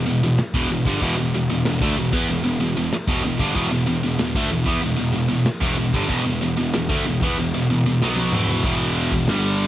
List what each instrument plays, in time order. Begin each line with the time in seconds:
0.06 picked electric bass E1, distorted electric guitar E2 B2
0.23 picked electric bass E1, distorted electric guitar E2 B2
0.38 muted distorted electric guitar stroke, muted picked electric bass stroke, snare, crash
0.54 picked electric bass E1, distorted electric guitar E2 B2, kick
0.70 picked electric bass E1, distorted electric guitar E2 B2
0.86 picked electric bass G1, distorted electric guitar G2 D3, kick
1.01 picked electric bass E1, distorted electric guitar E2 B2, kick, crash
1.17 picked electric bass E1, distorted electric guitar E2 B2
1.34 picked electric bass E1, distorted electric guitar E2 B2
1.50 picked electric bass E1, distorted electric guitar E2 B2
1.65 picked electric bass E1, distorted electric guitar E2 B2, snare, crash
1.81 picked electric bass D2, distorted electric guitar D3 A3, kick
1.96 picked electric bass E1, distorted electric guitar E2 B2
2.12 picked electric bass E2, distorted electric guitar E3 B3, kick
2.28 picked electric bass E1, distorted electric guitar E2 B2, crash
2.43 picked electric bass E1, distorted electric guitar E2 B2
2.60 picked electric bass E1, distorted electric guitar E2 B2
2.76 picked electric bass E1, distorted electric guitar E2 B2
2.92 muted picked electric bass stroke, muted distorted electric guitar stroke, snare, crash
3.07 picked electric bass E1, distorted electric guitar E2 B2, kick
3.23 picked electric bass E1, distorted electric guitar E2 B2
3.39 picked electric bass G1, distorted electric guitar G2 D3, kick
3.55 picked electric bass E1, distorted electric guitar E2 B2, kick, crash
3.72 picked electric bass E1, distorted electric guitar E2 B2
3.87 picked electric bass E1, distorted electric guitar E2 B2
4.04 picked electric bass E1, distorted electric guitar E2 B2
4.19 picked electric bass E1, distorted electric guitar E2 B2, snare, crash
4.34 picked electric bass D2, distorted electric guitar D3 A3, kick
4.51 picked electric bass E1, distorted electric guitar E2 B2
4.66 picked electric bass E2, distorted electric guitar E3 B3, kick
4.82 picked electric bass E1, distorted electric guitar E2 B2, crash
4.97 picked electric bass E1, distorted electric guitar E2 B2
5.13 picked electric bass E1, distorted electric guitar E2 B2
5.29 picked electric bass E1, distorted electric guitar E2 B2
5.46 muted distorted electric guitar stroke, muted picked electric bass stroke, snare, crash
5.61 picked electric bass E1, distorted electric guitar E2 B2, kick
5.78 picked electric bass E1, distorted electric guitar E2 B2
5.93 picked electric bass G1, distorted electric guitar G2 D3, kick
6.08 picked electric bass E1, distorted electric guitar E2 B2, kick, crash
6.25 picked electric bass E1, distorted electric guitar E2 B2
6.41 picked electric bass E1, distorted electric guitar E2 B2
6.57 picked electric bass E1, distorted electric guitar E2 B2
6.73 picked electric bass E1, distorted electric guitar E2 B2, snare, crash
6.89 picked electric bass D2, distorted electric guitar D3 A3, kick
7.05 picked electric bass E1, distorted electric guitar E2 B2
7.21 picked electric bass E2, distorted electric guitar E3 B3, kick
7.37 picked electric bass E1, distorted electric guitar E2 B2, crash
7.54 picked electric bass E1, distorted electric guitar E2 B2
7.70 picked electric bass E1, distorted electric guitar E2 B2
7.86 picked electric bass E1, distorted electric guitar E2 B2
8.01 picked electric bass B1, distorted electric guitar B2 F#3 B3, snare
8.16 high tom
8.32 picked electric bass E1, distorted electric guitar E2 B2 E3, mid tom
8.47 floor tom
8.63 picked electric bass E1, distorted electric guitar E2 B2 E3, kick, crash
8.95 crash
9.11 picked electric bass E1, distorted electric guitar E2 B2, kick
9.27 picked electric bass G1, distorted electric guitar G2 D3 G3, snare, crash
9.59 crash